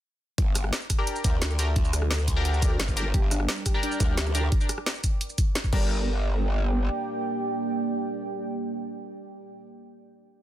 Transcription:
0.38 wobble bass G1, kick, closed hi-hat
0.55 cross-stick, closed hi-hat, shaker
0.64 cross-stick
0.73 snare, closed hi-hat
0.81 shaker
0.90 kick, cross-stick, closed hi-hat, shaker
0.99 synth stab D4 G4 A#4
1.07 closed hi-hat
1.16 shaker
1.24 wobble bass D2, kick, closed hi-hat, shaker
1.42 wobble bass D2, snare, closed hi-hat
1.50 shaker
1.59 synth stab D4 G4 A#4, closed hi-hat, shaker
1.76 kick, closed hi-hat
1.85 shaker
1.93 cross-stick, closed hi-hat, shaker
2.02 cross-stick
2.11 snare, closed hi-hat
2.19 shaker
2.28 kick, closed hi-hat, shaker
2.36 synth stab D4 G4 A#4
2.45 closed hi-hat
2.54 shaker
2.62 kick, closed hi-hat, shaker
2.80 wobble bass G1, snare, closed hi-hat
2.88 kick, shaker
2.97 synth stab D4 G4 A#4, closed hi-hat, shaker
3.14 wobble bass G1, synth pluck G4, ambient pad A#4 D5 G5 D6, kick, closed hi-hat
3.31 synth pluck D4, cross-stick, closed hi-hat, shaker
3.40 cross-stick
3.49 synth pluck G3, snare, closed hi-hat
3.57 shaker
3.66 synth pluck G4, kick, cross-stick, closed hi-hat, shaker
3.74 synth stab D4 G4 A#4
3.83 synth pluck D4, closed hi-hat
3.92 shaker
4.00 wobble bass D2, synth pluck G3, kick, closed hi-hat, shaker
4.17 wobble bass D2, synth pluck G4, snare, closed hi-hat
4.26 shaker
4.35 synth pluck D4, synth stab D4 G4 A#4, closed hi-hat, shaker
4.52 kick, closed hi-hat
4.61 shaker
4.69 cross-stick, closed hi-hat, shaker
4.78 cross-stick
4.86 snare, closed hi-hat
4.95 shaker
5.04 kick, closed hi-hat, shaker
5.21 closed hi-hat
5.30 shaker
5.38 kick, closed hi-hat, shaker
5.55 snare, closed hi-hat
5.64 kick, shaker
5.73 wobble bass G1, synth pluck G3, ambient pad A#3 G4 D5 G5, synth stab D4 G4 A#4, kick, crash

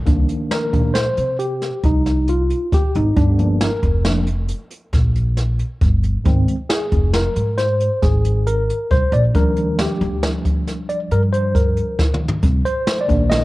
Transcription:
0.06 upright bass C2, tine electric piano D#3 A#3 D4, kick, closed hi-hat
0.29 closed hi-hat
0.51 tine electric piano A#4, snare, closed hi-hat
0.73 upright bass A#1, tine electric piano D#3 A#3 D4, kick, closed hi-hat
0.94 tine electric piano C5, snare, closed hi-hat
1.17 upright bass C3, closed hi-hat
1.39 tine electric piano G4, closed hi-hat
1.62 snare, closed hi-hat
1.84 upright bass C2, tine electric piano D#4, kick, closed hi-hat
2.06 snare, closed hi-hat
2.28 tine electric piano F4, closed hi-hat
2.50 closed hi-hat
2.72 upright bass D#2, tine electric piano G4, kick, snare, closed hi-hat
2.95 upright bass G#1, tine electric piano D#4, closed hi-hat
3.16 upright bass G1, tine electric piano D4, kick, closed hi-hat
3.39 tine electric piano F3 A#3 D4, closed hi-hat
3.61 tine electric piano A#4, snare, closed hi-hat
3.83 upright bass F1, kick, closed hi-hat
4.05 tine electric piano F3 A#3 D4, snare, closed hi-hat
4.27 closed hi-hat
4.48 closed hi-hat
4.71 closed hi-hat
4.93 upright bass A#1, kick, snare, closed hi-hat
5.16 closed hi-hat
5.37 snare, closed hi-hat
5.59 closed hi-hat
5.81 upright bass G1, kick, closed hi-hat
6.03 closed hi-hat
6.24 upright bass G#1, tine electric piano D#3 G#3 C4, kick, closed hi-hat
6.48 closed hi-hat
6.69 tine electric piano G#4, snare, closed hi-hat
6.92 upright bass F1, kick, closed hi-hat
7.13 tine electric piano A#4, snare, closed hi-hat
7.36 upright bass G#2, closed hi-hat
7.58 tine electric piano C5, snare, closed hi-hat
7.80 closed hi-hat
8.02 upright bass G#1, tine electric piano G#4, kick, snare, closed hi-hat
8.25 closed hi-hat
8.47 tine electric piano A#4, closed hi-hat
8.70 closed hi-hat
8.91 upright bass C2, tine electric piano C5, kick, closed hi-hat
9.12 upright bass A#1, tine electric piano D5, closed hi-hat
9.34 upright bass D#2, tine electric piano F3 G3 D4 A#4, kick, closed hi-hat
9.56 closed hi-hat
9.79 tine electric piano G4, snare, closed hi-hat
10.01 upright bass D2, kick, closed hi-hat
10.23 snare, closed hi-hat
10.45 kick, closed hi-hat
10.67 snare, closed hi-hat
10.89 tine electric piano D5, closed hi-hat
11.11 upright bass G2, tine electric piano A#4, closed hi-hat
11.33 tine electric piano C5, closed hi-hat
11.55 tine electric piano A#4, kick, closed hi-hat
11.77 closed hi-hat
11.99 upright bass D#3, kick, snare
12.14 mid tom
12.28 floor tom
12.43 upright bass C2, kick, closed hi-hat
12.65 tine electric piano C5, closed hi-hat
12.87 snare, closed hi-hat
13.01 tine electric piano D5
13.08 upright bass A#1, tine electric piano D#3 A#3 D4, kick, closed hi-hat
13.30 tine electric piano D#5, snare, closed hi-hat

